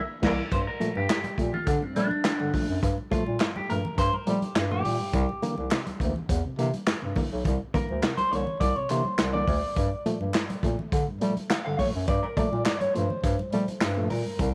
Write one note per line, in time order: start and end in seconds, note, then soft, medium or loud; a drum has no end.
0.22 0.43 C2 loud
0.22 0.42 E3 loud
0.22 0.43 A#3 loud
0.22 0.44 E4 loud
0.22 0.44 A#4 loud
0.22 0.44 D5 loud
0.22 kick loud
0.22 snare loud
0.22 crash medium
0.51 0.63 G2 medium
0.51 0.65 G2 medium
0.51 0.58 C5 loud
0.51 kick loud
0.51 closed hi-hat loud
0.51 muted conga soft
0.67 0.97 A#4 medium
0.80 0.92 A#2 medium
0.80 0.92 F3 medium
0.80 0.92 A3 medium
0.80 closed hi-hat medium
0.80 high conga medium
0.95 1.08 G2 loud
0.95 1.01 F3 soft
0.95 1.01 A3 soft
0.95 1.09 G4 medium
0.95 high conga medium
1.09 1.21 G2 medium
1.09 1.55 G4 medium
1.09 snare loud
1.09 clap loud
1.09 clap medium
1.09 closed hi-hat medium
1.24 1.30 A#2 medium
1.24 closed hi-hat medium
1.24 muted conga soft
1.24 high conga medium
1.38 1.51 A#2 medium
1.38 1.50 A#2 medium
1.38 1.50 F3 medium
1.38 1.50 A3 medium
1.38 kick medium
1.38 closed hi-hat medium
1.54 1.59 F3 soft
1.54 1.59 A3 soft
1.54 1.67 F4 medium
1.54 low conga medium
1.67 1.80 D3 loud
1.67 1.73 F3 soft
1.67 1.73 A3 soft
1.67 1.83 D4 medium
1.67 kick loud
1.67 closed hi-hat loud
1.82 1.93 G2 medium
1.82 1.96 C4 medium
1.82 muted conga soft
1.96 2.08 A#2 medium
1.96 2.08 F3 medium
1.96 2.10 G3 loud
1.96 2.08 A3 medium
1.96 2.79 D4 medium
1.96 closed hi-hat medium
2.11 high conga medium
2.25 2.31 D3 medium
2.25 2.31 F3 soft
2.25 2.31 A3 soft
2.25 snare loud
2.25 clap loud
2.25 clap medium
2.25 closed hi-hat medium
2.25 muted conga soft
2.40 2.51 G2 medium
2.40 2.52 D3 medium
2.40 muted conga soft
2.54 2.65 A#2 medium
2.54 2.66 F3 medium
2.54 2.66 A3 medium
2.54 kick medium
2.54 open hi-hat medium
2.54 high conga medium
2.54 low conga medium
2.69 2.81 F#2 medium
2.82 2.94 G2 medium
2.82 2.96 G2 loud
2.82 kick loud
2.82 closed hi-hat loud
2.82 muted conga soft
2.98 muted conga soft
3.11 3.23 A#2 medium
3.11 3.23 F3 medium
3.11 3.23 A3 loud
3.11 3.56 F4 medium
3.11 kick medium
3.11 closed hi-hat medium
3.11 high conga medium
3.26 3.39 A#2 medium
3.26 high conga medium
3.40 3.52 G2 medium
3.40 snare loud
3.40 clap loud
3.40 clap medium
3.40 closed hi-hat medium
3.55 3.61 G2 medium
3.55 3.70 G4 medium
3.55 muted conga soft
3.55 high conga medium
3.69 3.83 G2 medium
3.69 3.81 A#2 medium
3.69 3.81 F3 medium
3.69 3.81 A3 medium
3.69 3.98 A#4 loud
3.69 closed hi-hat medium
3.85 3.90 F3 soft
3.85 3.90 A3 soft
3.85 low conga medium
3.98 4.11 G2 loud
3.98 4.05 F3 soft
3.98 4.05 A3 soft
3.98 4.14 C5 loud
3.98 kick loud
3.98 closed hi-hat loud
3.98 muted conga soft
4.13 4.24 G2 medium
4.13 4.27 A#4 medium
4.13 muted conga soft
4.27 4.39 A#2 medium
4.27 4.39 F3 medium
4.27 4.41 G3 loud
4.27 4.39 A3 medium
4.27 4.70 G4 loud
4.27 closed hi-hat medium
4.42 closed hi-hat soft
4.42 high conga medium
4.56 4.81 G2 loud
4.56 snare loud
4.56 clap loud
4.56 clap medium
4.56 closed hi-hat loud
4.71 4.82 A#2 medium
4.71 4.82 F3 medium
4.71 4.82 A3 medium
4.71 6.12 G4 loud
4.71 muted conga soft
4.84 4.98 A#2 medium
4.84 open hi-hat medium
4.84 high conga medium
4.84 low conga medium
5.00 5.11 G2 medium
5.13 5.27 C2 loud
5.13 5.26 C3 medium
5.13 kick loud
5.13 closed hi-hat medium
5.13 muted conga soft
5.29 muted conga soft
5.42 5.54 D3 medium
5.42 5.54 E3 medium
5.42 5.55 A#3 loud
5.42 closed hi-hat medium
5.42 high conga medium
5.58 5.70 C2 medium
5.58 5.64 E3 soft
5.58 5.64 A#3 soft
5.58 high conga medium
5.71 5.83 C3 medium
5.71 snare loud
5.71 clap loud
5.71 clap medium
5.71 closed hi-hat medium
5.71 muted conga soft
5.87 5.93 D2 soft
5.87 closed hi-hat medium
5.87 muted conga soft
5.87 high conga medium
6.00 6.14 D2 loud
6.00 6.12 D3 medium
6.00 6.12 E3 medium
6.00 6.13 A#3 medium
6.00 kick medium
6.00 closed hi-hat medium
6.16 6.22 E3 soft
6.16 6.22 A#3 soft
6.16 low conga medium
6.29 6.43 E2 loud
6.29 6.36 E3 soft
6.29 6.36 A#3 soft
6.29 kick loud
6.29 closed hi-hat loud
6.29 muted conga soft
6.46 6.56 C3 medium
6.58 6.72 C3 loud
6.58 6.70 D3 medium
6.58 6.70 E3 medium
6.58 6.71 A#3 medium
6.58 closed hi-hat medium
6.73 closed hi-hat soft
6.73 high conga medium
6.87 6.94 G2 soft
6.87 6.94 E3 soft
6.87 6.94 A#3 soft
6.87 snare loud
6.87 clap medium
6.87 clap loud
6.87 closed hi-hat loud
6.87 muted conga soft
7.02 7.15 G2 medium
7.02 7.13 C3 medium
7.02 muted conga soft
7.16 7.28 D3 medium
7.16 7.28 E3 medium
7.16 7.29 A#3 medium
7.16 kick medium
7.16 open hi-hat medium
7.16 high conga medium
7.16 low conga medium
7.32 7.44 B1 medium
7.45 7.59 C2 loud
7.45 7.57 C3 medium
7.45 kick loud
7.45 closed hi-hat loud
7.45 muted conga soft
7.45 low conga medium
7.74 7.86 D3 medium
7.74 7.86 E3 medium
7.74 7.86 A#3 medium
7.74 8.20 A#4 medium
7.74 kick medium
7.74 closed hi-hat medium
7.74 high conga medium
7.89 8.02 D2 medium
7.89 7.95 E3 soft
7.89 7.95 A#3 soft
7.89 high conga medium
8.02 8.15 C3 medium
8.02 snare loud
8.02 clap loud
8.02 clap medium
8.02 closed hi-hat medium
8.02 muted conga soft
8.17 8.24 C2 soft
8.17 8.31 C5 medium
8.17 closed hi-hat medium
8.17 muted conga soft
8.17 high conga medium
8.31 8.45 C2 medium
8.31 8.44 D3 medium
8.31 8.44 E3 medium
8.31 8.44 A#3 medium
8.31 8.60 C#5 loud
8.31 closed hi-hat medium
8.47 8.53 E3 soft
8.47 8.53 A#3 soft
8.47 low conga medium
8.60 8.74 C2 medium
8.60 8.67 E3 soft
8.60 8.67 A#3 soft
8.60 8.76 D5 loud
8.60 kick loud
8.60 closed hi-hat loud
8.60 muted conga soft
8.76 8.87 C3 medium
8.76 8.89 C#5 medium
8.76 muted conga soft
8.89 9.03 C3 medium
8.89 9.02 D3 medium
8.89 9.02 E3 medium
8.89 9.02 A#3 medium
8.89 9.33 C5 loud
8.89 clap medium
8.89 closed hi-hat medium
9.05 high conga medium
9.18 9.43 C2 medium
9.18 9.31 C3 medium
9.18 snare loud
9.18 clap medium
9.18 closed hi-hat loud
9.18 muted conga soft
9.33 9.45 D3 medium
9.33 9.45 E3 medium
9.33 9.45 A#3 medium
9.33 10.74 D5 loud
9.33 muted conga soft
9.47 9.61 D2 medium
9.47 9.54 E3 soft
9.47 9.54 A#3 soft
9.47 kick medium
9.47 open hi-hat medium
9.47 high conga medium
9.47 low conga medium
9.76 9.90 G2 loud
9.76 9.89 G2 medium
9.76 kick loud
9.76 closed hi-hat medium
10.06 10.17 A#2 medium
10.06 10.17 F3 medium
10.06 10.18 A3 loud
10.06 closed hi-hat medium
10.06 high conga medium
10.20 10.32 G2 medium
10.20 10.27 F3 soft
10.20 10.27 A3 soft
10.20 high conga medium
10.34 10.47 G2 medium
10.34 snare loud
10.34 clap loud
10.34 clap medium
10.34 closed hi-hat loud
10.34 muted conga soft
10.49 10.55 A#2 soft
10.49 closed hi-hat medium
10.49 high conga medium
10.63 10.77 A#2 medium
10.63 10.75 A#2 medium
10.63 10.75 F3 medium
10.63 10.75 A3 medium
10.63 kick medium
10.63 closed hi-hat medium
10.79 10.85 F3 soft
10.79 10.85 A3 soft
10.79 low conga medium
10.92 11.06 D3 medium
10.92 10.99 F3 soft
10.92 10.99 A3 soft
10.92 kick loud
10.92 closed hi-hat medium
10.92 muted conga soft
11.08 11.18 G2 medium
11.21 11.33 A#2 medium
11.21 11.33 F3 medium
11.21 11.35 G3 loud
11.21 11.33 A3 loud
11.21 closed hi-hat medium
11.37 closed hi-hat soft
11.37 high conga medium
11.50 11.57 D3 medium
11.50 11.57 F3 soft
11.50 11.57 A3 soft
11.50 11.64 F5 loud
11.50 snare loud
11.50 clap medium
11.50 clap loud
11.50 closed hi-hat loud
11.66 11.76 G2 medium
11.66 11.77 D3 medium
11.66 11.78 F5 loud
11.66 muted conga soft
11.79 11.91 A#2 medium
11.79 11.91 F3 medium
11.79 11.91 A3 medium
11.79 11.87 C#5 medium
11.79 kick medium
11.79 open hi-hat medium
11.79 high conga medium
11.79 low conga medium
11.95 12.06 F#2 medium
12.08 12.21 G2 loud
12.08 12.20 G2 medium
12.08 12.24 D5 medium
12.08 kick loud
12.08 closed hi-hat loud
12.23 12.37 A#4 medium
12.23 muted conga soft
12.37 12.48 A#2 medium
12.37 12.49 F3 medium
12.37 12.49 A3 loud
12.37 12.64 D5 loud
12.37 kick loud
12.37 closed hi-hat medium
12.37 high conga medium
12.52 12.64 A#2 loud
12.52 12.58 F3 soft
12.52 12.58 A3 soft
12.52 high conga medium
12.65 12.78 G2 medium
12.65 12.80 D5 medium
12.65 snare loud
12.65 clap loud
12.65 closed hi-hat medium
12.65 muted conga soft
12.80 12.87 G2 soft
12.80 12.94 C#5 medium
12.80 closed hi-hat medium
12.80 muted conga soft
12.80 high conga medium
12.94 13.09 G2 loud
12.94 13.06 A#2 medium
12.94 13.06 F3 medium
12.94 13.07 A3 medium
12.94 14.13 C5 loud
12.94 closed hi-hat medium
13.10 13.16 F3 soft
13.10 13.16 A3 soft
13.10 low conga medium
13.24 13.37 G2 loud
13.24 13.30 F3 soft
13.24 13.30 A3 medium
13.24 kick loud
13.24 closed hi-hat loud
13.24 muted conga soft
13.39 13.50 G2 medium
13.39 muted conga soft
13.52 13.65 A#2 medium
13.52 13.65 F3 medium
13.52 13.66 G3 loud
13.52 13.65 A3 medium
13.52 closed hi-hat medium
13.68 closed hi-hat soft
13.68 high conga medium
13.81 14.07 G2 loud
13.81 snare loud
13.81 clap medium
13.81 clap loud
13.81 closed hi-hat medium
13.81 muted conga soft
13.97 14.07 A#2 medium
13.97 14.07 F3 medium
13.97 14.08 A3 medium
14.10 14.24 A#2 medium
14.10 14.54 A#4 medium
14.10 open hi-hat medium
14.10 high conga medium
14.10 low conga medium
14.26 14.36 G2 medium
14.39 14.53 C2 loud
14.39 14.51 C3 medium
14.39 kick loud
14.39 closed hi-hat loud
14.39 muted conga soft